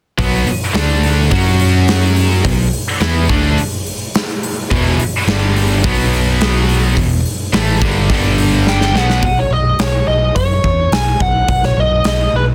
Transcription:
0.18 0.45 B1 medium
0.18 0.46 B2 medium
0.18 0.46 F#3 medium
0.18 0.46 B3 medium
0.18 kick loud
0.18 open hi-hat medium
0.47 muted overdriven electric guitar stroke medium
0.47 muted picked electric bass stroke soft
0.47 muted distorted electric guitar stroke medium
0.47 open hi-hat medium
0.73 1.28 D2 medium
0.73 1.30 D3 medium
0.73 1.30 A3 medium
0.73 1.30 D4 loud
0.73 snare loud
0.73 open hi-hat medium
1.03 open hi-hat medium
1.30 2.41 F#2 medium
1.30 2.43 F#3 medium
1.30 2.43 C#4 medium
1.30 2.44 F#4 medium
1.30 kick loud
1.30 open hi-hat medium
1.60 open hi-hat medium
1.88 snare loud
1.88 open hi-hat medium
2.16 open hi-hat medium
2.45 2.71 B1 medium
2.45 2.67 B2 medium
2.45 2.67 F#3 medium
2.45 kick medium
2.45 open hi-hat medium
2.73 open hi-hat medium
3.00 3.27 E2 loud
3.00 3.28 E3 medium
3.00 3.28 B3 medium
3.00 3.29 E4 loud
3.00 snare loud
3.00 open hi-hat medium
3.29 3.56 D2 medium
3.29 3.57 D3 medium
3.29 3.57 A3 medium
3.29 3.57 D4 loud
3.29 kick loud
3.29 open hi-hat medium
3.58 open hi-hat medium
3.86 open hi-hat medium
4.15 snare loud
4.15 open hi-hat medium
4.43 open hi-hat medium
4.71 4.97 E1 medium
4.71 4.98 E2 medium
4.71 4.98 B2 medium
4.71 4.99 E3 loud
4.71 kick loud
4.71 open hi-hat medium
4.99 muted picked electric bass stroke soft
4.99 muted distorted electric guitar stroke medium
4.99 muted overdriven electric guitar stroke medium
4.99 open hi-hat medium
5.27 5.80 G1 loud
5.27 5.83 G2 medium
5.27 5.83 D3 medium
5.27 5.84 G3 medium
5.27 snare loud
5.27 open hi-hat medium
5.56 open hi-hat medium
5.84 6.93 B1 medium
5.84 6.96 B2 medium
5.84 6.96 F#3 loud
5.84 6.96 B3 loud
5.84 kick loud
5.84 open hi-hat medium
6.13 open hi-hat medium
6.41 snare loud
6.41 open hi-hat medium
6.69 open hi-hat medium
6.97 7.23 E1 medium
6.97 7.19 E2 medium
6.97 7.20 B2 medium
6.97 kick medium
6.97 open hi-hat medium
7.25 open hi-hat medium
7.53 7.79 A1 loud
7.53 7.81 A2 medium
7.53 7.81 E3 medium
7.53 7.81 A3 loud
7.53 snare loud
7.53 open hi-hat medium
7.81 8.08 G1 medium
7.81 8.08 G2 medium
7.81 8.09 D3 medium
7.81 8.09 G3 loud
7.81 kick loud
7.81 open hi-hat medium
8.10 8.90 G1 medium
8.10 8.94 G2 medium
8.10 8.94 D3 medium
8.10 8.94 G3 loud
8.10 kick loud
8.10 open hi-hat medium
8.38 open hi-hat medium
8.67 8.94 G5 loud
8.67 snare medium
8.81 snare medium
8.93 9.20 B1 medium
8.93 9.22 B2 medium
8.93 9.22 F#3 medium
8.93 9.22 B3 loud
8.93 snare medium
8.98 9.24 F#5 medium
9.10 snare medium
9.22 9.44 B1 medium
9.22 9.39 F#5 medium
9.22 kick loud
9.22 open hi-hat medium
9.39 9.53 C#5 medium
9.51 9.72 B1 medium
9.51 9.80 D#5 medium
9.79 10.00 B1 medium
9.79 10.07 C#5 medium
9.79 snare loud
9.79 open hi-hat soft
10.08 10.29 B1 medium
10.08 10.34 D#5 medium
10.36 10.57 F#2 medium
10.36 10.94 C#5 medium
10.36 kick medium
10.36 open hi-hat soft
10.64 10.85 E2 medium
10.64 kick medium
10.92 11.13 B1 medium
10.92 11.21 G#5 loud
10.92 snare loud
10.92 open hi-hat medium
11.20 11.41 B1 medium
11.20 11.48 F#5 medium
11.20 kick medium
11.48 11.70 B1 medium
11.48 11.62 F#5 loud
11.48 kick loud
11.48 open hi-hat medium
11.63 11.80 C#5 medium
11.63 snare soft
11.77 11.98 B1 medium
11.77 12.06 D#5 medium
12.04 12.26 B1 medium
12.04 12.35 D#5 medium
12.04 snare loud
12.04 open hi-hat soft
12.33 12.54 B1 medium
12.33 12.43 B4 medium

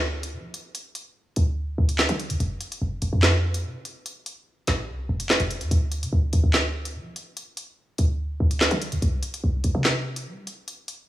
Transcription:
0.00 0.35 D2 loud
0.23 closed hi-hat medium
0.33 0.53 F3 loud
0.54 closed hi-hat medium
0.75 closed hi-hat medium
0.95 closed hi-hat medium
1.36 1.77 D2 loud
1.36 closed hi-hat medium
1.78 2.08 D2 loud
1.89 closed hi-hat medium
1.99 snare loud
1.99 clap loud
2.09 2.31 D3 loud
2.09 closed hi-hat medium
2.20 closed hi-hat medium
2.30 2.40 C2 loud
2.30 closed hi-hat medium
2.40 2.60 F1 loud
2.40 closed hi-hat medium
2.61 closed hi-hat medium
2.72 closed hi-hat medium
2.82 3.01 F1 loud
3.02 3.12 F1 loud
3.02 closed hi-hat medium
3.13 3.66 F2 loud
3.23 snare loud
3.23 clap loud
3.54 closed hi-hat medium
3.64 3.84 C3 loud
3.85 closed hi-hat medium
4.06 closed hi-hat medium
4.26 closed hi-hat medium
4.67 4.90 A1 loud
4.67 snare medium
4.67 closed hi-hat medium
4.89 5.08 C2 loud
5.09 5.39 F1 loud
5.20 closed hi-hat medium
5.30 snare loud
5.30 clap loud
5.40 5.62 F1 loud
5.40 closed hi-hat medium
5.51 closed hi-hat medium
5.61 5.71 F2 loud
5.61 closed hi-hat medium
5.71 6.04 D2 loud
5.71 closed hi-hat medium
5.92 closed hi-hat medium
6.02 6.12 D3 loud
6.02 closed hi-hat medium
6.13 6.33 D2 loud
6.33 6.43 D2 loud
6.33 closed hi-hat medium
6.44 6.97 D2 loud
6.54 snare loud
6.54 clap loud
6.85 closed hi-hat medium
6.95 7.15 F3 loud
7.16 closed hi-hat medium
7.37 closed hi-hat medium
7.57 closed hi-hat medium
7.98 8.39 D2 loud
7.98 closed hi-hat medium
8.40 8.70 D2 loud
8.51 closed hi-hat medium
8.61 snare loud
8.61 clap medium
8.71 8.93 D3 loud
8.71 closed hi-hat medium
8.82 closed hi-hat medium
8.92 9.02 C2 loud
8.92 closed hi-hat medium
9.02 9.22 C2 loud
9.02 closed hi-hat medium
9.23 closed hi-hat medium
9.34 closed hi-hat medium
9.44 9.64 C2 loud
9.64 9.74 C2 loud
9.64 closed hi-hat medium
9.75 10.28 C3 loud
9.85 snare loud
9.85 clap medium
10.16 closed hi-hat medium
10.27 10.46 G3 loud
10.47 closed hi-hat medium
10.68 closed hi-hat medium
10.88 closed hi-hat medium

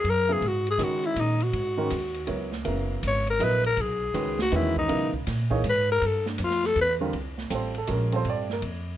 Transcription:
0.00 0.11 G#4 medium
0.04 0.41 F#2 medium
0.04 ride medium
0.10 0.34 A#4 loud
0.28 0.40 C#3 medium
0.28 0.41 F#3 medium
0.28 0.41 B3 medium
0.28 0.41 E4 medium
0.28 0.41 G#4 medium
0.33 0.49 G#4 medium
0.41 0.78 G#2 medium
0.41 ride soft
0.47 0.69 F#4 medium
0.67 0.85 G#4 loud
0.67 ride soft
0.78 1.15 C#3 medium
0.78 1.36 D#3 medium
0.78 1.36 G#3 medium
0.78 1.36 C#4 medium
0.78 1.36 F#4 medium
0.78 1.36 A#4 medium
0.78 hi-hat pedal medium
0.78 ride medium
0.83 1.08 F#4 medium
1.03 1.22 E4 loud
1.03 ride soft
1.16 1.52 A#2 medium
1.16 hi-hat pedal medium
1.16 ride medium
1.21 1.45 D#4 medium
1.40 2.30 F#4 medium
1.40 ride soft
1.53 1.90 G#2 medium
1.53 ride medium
1.77 1.89 D#3 medium
1.77 1.90 G#3 medium
1.77 1.90 C#4 medium
1.77 1.90 F#4 medium
1.77 1.90 A#4 medium
1.90 2.27 D#2 medium
1.90 hi-hat pedal medium
1.90 ride medium
2.14 ride soft
2.27 2.65 C#2 medium
2.27 2.50 F#3 medium
2.27 2.50 B3 soft
2.27 2.50 E4 soft
2.27 2.50 A#4 soft
2.27 2.50 C#5 medium
2.27 ride medium
2.52 snare soft
2.64 3.02 F#1 medium
2.64 3.22 C#3 medium
2.64 3.22 F#3 medium
2.64 3.22 B3 medium
2.64 3.22 E4 medium
2.64 3.22 A#4 medium
2.64 ride medium
3.03 3.39 G#1 medium
3.03 hi-hat pedal medium
3.03 ride medium
3.07 3.28 C#5 medium
3.27 3.45 A#4 loud
3.27 ride soft
3.40 3.76 A#1 medium
3.40 3.62 F#3 medium
3.40 3.62 B3 medium
3.40 3.62 E4 medium
3.40 3.63 A#4 medium
3.40 3.62 D#5 medium
3.40 hi-hat pedal soft
3.40 ride medium
3.44 3.66 B4 loud
3.64 3.83 A#4 medium
3.64 ride soft
3.77 4.13 B1 medium
3.77 ride medium
3.81 4.41 G#4 medium
4.14 4.51 C#2 medium
4.14 4.36 D#3 medium
4.14 4.37 G#3 medium
4.14 4.37 C#4 medium
4.14 4.37 F#4 medium
4.14 4.37 B4 medium
4.14 hi-hat pedal medium
4.14 ride medium
4.39 4.58 F#4 loud
4.39 snare medium
4.52 4.88 E2 medium
4.52 5.09 D#3 medium
4.52 5.09 G#3 medium
4.52 5.09 C#4 medium
4.52 5.09 F#4 medium
4.52 5.09 B4 medium
4.52 ride medium
4.56 4.78 E4 medium
4.76 5.12 D#4 medium
4.76 kick soft
4.88 5.26 B2 medium
4.88 5.11 C#3 medium
4.88 5.11 F#3 medium
4.88 5.11 B3 medium
4.88 5.11 E4 medium
4.88 5.11 A#4 medium
4.88 ride medium
5.14 kick soft
5.27 5.63 A#2 medium
5.27 snare soft
5.27 hi-hat pedal medium
5.27 ride medium
5.50 5.62 E3 medium
5.50 5.62 A#3 medium
5.50 5.62 D#4 medium
5.50 5.62 G#4 medium
5.50 5.63 C#5 medium
5.50 kick medium
5.64 6.00 G#2 medium
5.64 hi-hat pedal soft
5.64 ride medium
5.69 5.90 B4 loud
5.92 6.08 A#4 loud
6.02 6.38 G2 medium
6.02 ride medium
6.06 6.28 A4 medium
6.26 6.45 D4 medium
6.26 snare soft
6.38 6.75 F2 medium
6.38 hi-hat pedal medium
6.38 ride medium
6.44 6.68 F4 loud
6.50 snare soft
6.64 6.78 A4 loud
6.64 snare soft
6.76 7.12 E2 loud
6.76 ride medium
6.81 6.94 B4 loud
7.01 7.12 D3 medium
7.01 7.12 G3 medium
7.01 7.12 C4 medium
7.01 7.13 F4 medium
7.01 7.13 A#4 medium
7.13 7.49 C2 medium
7.13 ride medium
7.38 snare soft
7.50 7.87 A1 medium
7.50 7.72 G3 medium
7.50 7.73 C4 soft
7.50 7.73 F4 soft
7.50 7.73 A4 medium
7.50 hi-hat pedal medium
7.50 ride medium
7.55 7.77 C5 medium
7.74 7.89 A4 medium
7.74 ride soft
7.87 8.24 A#1 medium
7.87 8.10 G#3 medium
7.87 8.10 C#4 medium
7.87 8.10 F#4 soft
7.87 7.91 A#4 medium
7.87 hi-hat pedal medium
7.87 ride medium
7.92 8.14 A#4 medium
8.12 8.45 G3 medium
8.12 8.45 C4 medium
8.12 8.45 F4 soft
8.12 8.45 A4 medium
8.12 8.27 C5 medium
8.12 ride soft
8.25 8.61 G2 medium
8.25 ride medium
8.30 8.51 D5 medium
8.50 8.60 A#4 medium
8.50 snare soft
8.62 8.97 F2 medium
8.62 ride medium

